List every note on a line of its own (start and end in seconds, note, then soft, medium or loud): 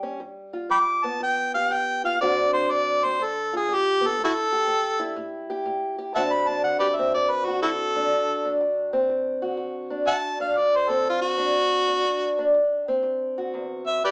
0.00 0.17 A2 medium
0.00 1.03 G3 medium
0.00 0.19 C#4 medium
0.00 0.19 G4 medium
0.20 0.67 G2 medium
0.53 2.02 F4 medium
0.69 1.16 G2 medium
0.69 0.79 G5 medium
0.69 0.79 B5 medium
0.69 1.06 D6 medium
1.04 2.18 B3 medium
1.04 1.21 A5 medium
1.20 1.67 G2 medium
1.20 1.53 G5 medium
1.54 2.18 G4 medium
1.54 1.75 F5 medium
1.70 2.16 G2 medium
1.70 2.03 G5 medium
2.04 2.18 F4 medium
2.04 2.20 F5 medium
2.21 2.66 D2 medium
2.21 5.16 D3 medium
2.21 3.02 C4 medium
2.21 2.53 D4 medium
2.21 3.18 F#4 medium
2.21 2.51 D5 medium
2.53 3.17 D4 medium
2.53 2.72 C5 medium
2.71 3.16 D2 medium
2.71 3.06 D5 medium
3.04 3.18 C4 medium
3.04 3.25 C5 medium
3.20 3.65 G2 medium
3.20 3.52 A4 medium
3.53 4.16 F4 medium
3.53 3.76 G#4 medium
3.69 4.14 G2 medium
3.74 4.08 G4 loud
4.01 4.15 B3 medium
4.06 4.20 A4 medium
4.19 4.64 A2 medium
4.24 4.32 E4 medium
4.24 4.33 F#4 medium
4.24 5.16 A4 loud
4.52 5.49 G4 medium
4.67 5.12 A2 medium
4.99 6.12 E4 medium
5.16 5.62 A2 medium
5.50 5.97 G4 medium
5.66 6.11 A2 medium
5.98 6.12 G4 medium
6.15 6.60 D2 medium
6.15 10.09 D3 medium
6.15 6.99 C4 medium
6.15 6.48 D4 medium
6.15 7.47 F#4 medium
6.15 6.24 E5 medium
6.15 6.23 F#5 medium
6.15 6.35 A5 medium
6.33 6.50 B5 medium
6.48 7.96 D4 soft
6.48 6.63 A5 medium
6.64 7.10 D2 medium
6.64 6.79 F#5 medium
6.79 6.88 G4 medium
6.79 6.88 B4 medium
6.79 6.98 D5 medium
6.96 8.15 C4 medium
6.96 7.12 E5 medium
7.14 7.59 D2 medium
7.14 7.32 D5 medium
7.30 7.47 B4 medium
7.46 7.61 F#4 medium
7.46 8.96 F#4 medium
7.62 8.09 D2 medium
7.62 7.71 E4 medium
7.62 7.70 F#4 medium
7.62 8.57 A4 medium
7.96 8.44 D4 medium
8.12 8.57 D2 medium
8.45 9.90 D4 medium
8.61 9.06 D2 medium
8.93 10.11 C4 medium
9.09 9.55 D2 medium
9.42 10.92 F#4 medium
9.57 10.04 D2 medium
9.90 10.40 D4 medium
10.07 10.54 D2 medium
10.07 10.14 E5 medium
10.07 10.16 F#5 medium
10.07 10.39 A5 loud
10.40 11.37 D4 medium
10.40 10.60 F5 medium
10.57 11.03 D2 medium
10.57 10.77 D5 medium
10.76 10.91 C5 medium
10.89 12.03 C4 medium
10.89 11.06 A4 medium
11.05 11.52 D2 medium
11.09 11.21 F4 medium
11.22 12.66 F#4 loud
11.38 11.87 D4 medium
11.55 12.01 D2 medium
11.88 12.38 D4 medium
12.05 12.51 D2 medium
12.39 14.11 D4 medium
12.54 13.00 D2 medium
12.88 14.01 C4 medium
13.03 13.49 D2 medium
13.38 14.01 F#4 medium
13.54 13.86 E2 medium
13.87 14.03 F#2 medium
13.87 14.02 E5 medium
14.04 14.11 G2 medium
14.04 14.11 G4 medium
14.04 14.11 B4 medium
14.04 14.11 D5 medium